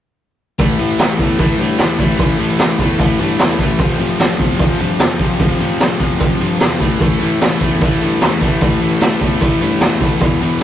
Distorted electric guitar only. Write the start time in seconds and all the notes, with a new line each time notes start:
0.59 A2 E3 A3
0.80 A2 E3 A3
1.00 A2 E3 A3
1.20 A2 E3 A3
1.40 A2 E3 A3
1.60 A2 E3 A3
1.79 A2 E3 A3
2.00 A2 E3 A3
2.20 A2 E3 A3
2.39 A2 E3 A3
2.59 A2 E3 A3
2.80 A2 E3 A3
2.99 A2 E3 A3
3.19 A2 E3 A3
3.40 A2 E3 A3
3.59 A2 E3 A3
3.79 F2 C3 F3
3.99 F2 C3 F3
4.20 F2 C3 F3
4.39 F2 C3 F3
4.59 F2 C3 F3
4.80 F2 C3 F3
5.00 F2 C3 F3
5.20 F2 C3 F3
5.40 F2 C3 F3
5.60 F2 C3 F3
5.81 F2 C3 F3
6.00 F2 C3 F3
6.20 F2 C3 F3
6.40 F2 C3 F3
6.61 F2 C3 F3
6.80 A2 E3 A3
7.01 A2 E3 A3
7.21 A2 E3 A3
7.41 A2 E3 A3
7.61 A2 E3 A3
7.82 A2 E3 A3
8.01 A2 E3 A3
8.21 A2 E3 A3
8.41 A2 E3 A3
8.62 A2 E3 A3
8.81 A2 E3 A3
9.01 A2 E3 A3
9.21 A2 E3 A3
9.41 A2 E3 A3
9.61 A2 E3 A3
9.82 A2 E3 A3
10.01 A2 E3 A3
10.22 E2 B2 E3
10.41 E2 B2 E3